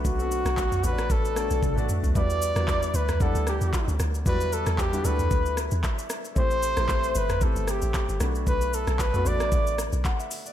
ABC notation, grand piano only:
X:1
M:4/4
L:1/16
Q:"Swing 16ths" 1/4=114
K:Em
V:1 name="Grand piano"
z [A,B,CDFA]4 z [A,B,DF^cd]3 z [A,B,DFd]2 z [A,B,DFd]2 z | [G,DEFB]2 z [G,DEFB]4 z [G,DEdf]6 z2 | [F,G,DEFd]4 z [G,DEFB] [G,DEFA]6 e4 | [A,CEGc]2 z [A,CEGBc]4 z [A,CEGc]6 [A,B,DFB]2- |
[A,B,DFB]4 z [A,B,DFB] [A,B,DFd]6 f e2 d |]